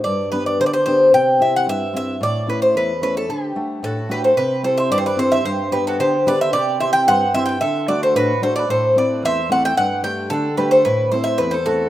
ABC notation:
X:1
M:2/4
L:1/16
Q:1/4=111
K:G
V:1 name="Bouzouki"
d2 B d c/2 d/2 c c2 | g2 e f e2 e2 | d2 B c B2 B A | G4 A2 B c |
B2 c e d/2 c/2 d c e | c2 B A c2 d e | d2 e g f2 e g | e2 d c B2 c d |
c2 d2 e2 f g | f2 g2 A2 B c | B2 c e B c A2 |]
V:2 name="Mandolin"
z8 | z8 | z8 | z4 F2 G A |
G2 A c G/2 A/2 B A c | G2 G F G2 B c | G2 c e c2 c e | A2 B A F2 A B |
A2 B2 c2 d e | d2 e2 D2 G A | E2 A c E A F2 |]
V:3 name="Steel-string acoustic guitar"
G,,2 [B,DG]2 D,2 [B,DG]2 | C,2 [CEG]2 G,,2 [CEG]2 | A,,2 [A,^CE]2 E,,2 [A,CE]2 | D,2 [A,Df]2 A,,2 [A,DF]2 |
C,2 [CEG]2 G,,2 [CEG]2 | G,,2 [B,DG]2 D,2 [B,DG]2 | C,2 [CEG]2 G,,2 [CEG]2 | D,2 [A,DF]2 A,,2 [A,DF]2 |
A,,2 [A,CE]2 E,,2 [A,CE]2 | G,,2 [A,DG]2 D,2 [A,DG]2 | A,,2 [A,CE]2 E,,2 [A,CE]2 |]